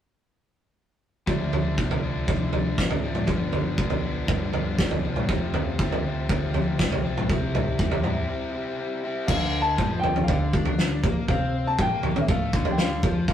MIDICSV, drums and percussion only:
0, 0, Header, 1, 2, 480
1, 0, Start_track
1, 0, Tempo, 500417
1, 1221, Time_signature, 4, 2, 24, 8
1, 12790, End_track
2, 0, Start_track
2, 0, Title_t, "Drums"
2, 1222, Note_on_c, 9, 36, 77
2, 1225, Note_on_c, 9, 43, 61
2, 1318, Note_off_c, 9, 36, 0
2, 1321, Note_off_c, 9, 43, 0
2, 1468, Note_on_c, 9, 43, 71
2, 1564, Note_off_c, 9, 43, 0
2, 1707, Note_on_c, 9, 36, 88
2, 1802, Note_off_c, 9, 36, 0
2, 1831, Note_on_c, 9, 43, 71
2, 1926, Note_off_c, 9, 43, 0
2, 2187, Note_on_c, 9, 36, 88
2, 2188, Note_on_c, 9, 43, 72
2, 2283, Note_off_c, 9, 36, 0
2, 2284, Note_off_c, 9, 43, 0
2, 2424, Note_on_c, 9, 43, 65
2, 2520, Note_off_c, 9, 43, 0
2, 2667, Note_on_c, 9, 36, 92
2, 2670, Note_on_c, 9, 38, 60
2, 2763, Note_off_c, 9, 36, 0
2, 2766, Note_off_c, 9, 38, 0
2, 2786, Note_on_c, 9, 43, 73
2, 2882, Note_off_c, 9, 43, 0
2, 3020, Note_on_c, 9, 47, 60
2, 3116, Note_off_c, 9, 47, 0
2, 3137, Note_on_c, 9, 43, 65
2, 3144, Note_on_c, 9, 36, 76
2, 3233, Note_off_c, 9, 43, 0
2, 3240, Note_off_c, 9, 36, 0
2, 3383, Note_on_c, 9, 43, 68
2, 3479, Note_off_c, 9, 43, 0
2, 3626, Note_on_c, 9, 36, 81
2, 3722, Note_off_c, 9, 36, 0
2, 3741, Note_on_c, 9, 43, 69
2, 3837, Note_off_c, 9, 43, 0
2, 4108, Note_on_c, 9, 36, 91
2, 4109, Note_on_c, 9, 43, 73
2, 4204, Note_off_c, 9, 36, 0
2, 4205, Note_off_c, 9, 43, 0
2, 4349, Note_on_c, 9, 43, 69
2, 4445, Note_off_c, 9, 43, 0
2, 4590, Note_on_c, 9, 36, 92
2, 4590, Note_on_c, 9, 38, 66
2, 4686, Note_off_c, 9, 36, 0
2, 4686, Note_off_c, 9, 38, 0
2, 4710, Note_on_c, 9, 43, 73
2, 4806, Note_off_c, 9, 43, 0
2, 4949, Note_on_c, 9, 47, 61
2, 5045, Note_off_c, 9, 47, 0
2, 5072, Note_on_c, 9, 36, 85
2, 5076, Note_on_c, 9, 43, 64
2, 5168, Note_off_c, 9, 36, 0
2, 5172, Note_off_c, 9, 43, 0
2, 5311, Note_on_c, 9, 43, 73
2, 5407, Note_off_c, 9, 43, 0
2, 5554, Note_on_c, 9, 36, 93
2, 5650, Note_off_c, 9, 36, 0
2, 5681, Note_on_c, 9, 43, 68
2, 5776, Note_off_c, 9, 43, 0
2, 6037, Note_on_c, 9, 36, 97
2, 6042, Note_on_c, 9, 43, 76
2, 6133, Note_off_c, 9, 36, 0
2, 6138, Note_off_c, 9, 43, 0
2, 6276, Note_on_c, 9, 43, 71
2, 6371, Note_off_c, 9, 43, 0
2, 6516, Note_on_c, 9, 36, 91
2, 6517, Note_on_c, 9, 38, 67
2, 6612, Note_off_c, 9, 36, 0
2, 6613, Note_off_c, 9, 38, 0
2, 6641, Note_on_c, 9, 43, 71
2, 6737, Note_off_c, 9, 43, 0
2, 6883, Note_on_c, 9, 47, 64
2, 6979, Note_off_c, 9, 47, 0
2, 6998, Note_on_c, 9, 36, 85
2, 7000, Note_on_c, 9, 43, 64
2, 7094, Note_off_c, 9, 36, 0
2, 7096, Note_off_c, 9, 43, 0
2, 7240, Note_on_c, 9, 43, 74
2, 7240, Note_on_c, 9, 47, 68
2, 7336, Note_off_c, 9, 43, 0
2, 7336, Note_off_c, 9, 47, 0
2, 7473, Note_on_c, 9, 36, 91
2, 7569, Note_off_c, 9, 36, 0
2, 7591, Note_on_c, 9, 43, 74
2, 7687, Note_off_c, 9, 43, 0
2, 7710, Note_on_c, 9, 47, 63
2, 7806, Note_off_c, 9, 47, 0
2, 8904, Note_on_c, 9, 36, 83
2, 8904, Note_on_c, 9, 43, 69
2, 8904, Note_on_c, 9, 49, 74
2, 9000, Note_off_c, 9, 36, 0
2, 9000, Note_off_c, 9, 43, 0
2, 9000, Note_off_c, 9, 49, 0
2, 9385, Note_on_c, 9, 36, 95
2, 9386, Note_on_c, 9, 47, 67
2, 9480, Note_off_c, 9, 36, 0
2, 9482, Note_off_c, 9, 47, 0
2, 9625, Note_on_c, 9, 43, 73
2, 9721, Note_off_c, 9, 43, 0
2, 9744, Note_on_c, 9, 43, 74
2, 9840, Note_off_c, 9, 43, 0
2, 9863, Note_on_c, 9, 43, 81
2, 9864, Note_on_c, 9, 36, 90
2, 9959, Note_off_c, 9, 43, 0
2, 9960, Note_off_c, 9, 36, 0
2, 10105, Note_on_c, 9, 36, 86
2, 10201, Note_off_c, 9, 36, 0
2, 10219, Note_on_c, 9, 43, 74
2, 10315, Note_off_c, 9, 43, 0
2, 10345, Note_on_c, 9, 38, 68
2, 10441, Note_off_c, 9, 38, 0
2, 10586, Note_on_c, 9, 36, 90
2, 10586, Note_on_c, 9, 43, 78
2, 10681, Note_off_c, 9, 43, 0
2, 10682, Note_off_c, 9, 36, 0
2, 10822, Note_on_c, 9, 43, 72
2, 10824, Note_on_c, 9, 36, 81
2, 10918, Note_off_c, 9, 43, 0
2, 10920, Note_off_c, 9, 36, 0
2, 11305, Note_on_c, 9, 36, 92
2, 11308, Note_on_c, 9, 47, 67
2, 11401, Note_off_c, 9, 36, 0
2, 11404, Note_off_c, 9, 47, 0
2, 11541, Note_on_c, 9, 43, 73
2, 11636, Note_off_c, 9, 43, 0
2, 11665, Note_on_c, 9, 43, 83
2, 11761, Note_off_c, 9, 43, 0
2, 11782, Note_on_c, 9, 43, 78
2, 11784, Note_on_c, 9, 36, 100
2, 11878, Note_off_c, 9, 43, 0
2, 11880, Note_off_c, 9, 36, 0
2, 12022, Note_on_c, 9, 36, 95
2, 12118, Note_off_c, 9, 36, 0
2, 12134, Note_on_c, 9, 43, 74
2, 12230, Note_off_c, 9, 43, 0
2, 12259, Note_on_c, 9, 38, 70
2, 12355, Note_off_c, 9, 38, 0
2, 12499, Note_on_c, 9, 43, 76
2, 12500, Note_on_c, 9, 36, 98
2, 12595, Note_off_c, 9, 43, 0
2, 12596, Note_off_c, 9, 36, 0
2, 12739, Note_on_c, 9, 36, 81
2, 12740, Note_on_c, 9, 43, 67
2, 12790, Note_off_c, 9, 36, 0
2, 12790, Note_off_c, 9, 43, 0
2, 12790, End_track
0, 0, End_of_file